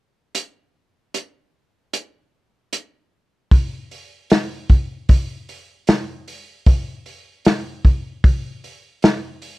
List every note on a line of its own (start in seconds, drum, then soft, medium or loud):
0.35 closed hi-hat soft
1.14 closed hi-hat soft
1.93 closed hi-hat soft
2.73 closed hi-hat soft
3.51 kick medium
3.51 open hi-hat medium
3.91 open hi-hat soft
4.30 snare medium
4.30 open hi-hat medium
4.69 kick medium
4.69 open hi-hat soft
5.09 kick medium
5.09 open hi-hat medium
5.49 open hi-hat soft
5.87 snare medium
5.87 open hi-hat medium
6.28 open hi-hat soft
6.66 kick medium
6.66 open hi-hat medium
7.06 open hi-hat soft
7.45 snare medium
7.45 open hi-hat medium
7.85 kick medium
7.85 open hi-hat soft
8.24 kick loud
8.24 open hi-hat medium
8.64 open hi-hat soft
9.02 snare medium
9.02 open hi-hat medium
9.42 open hi-hat soft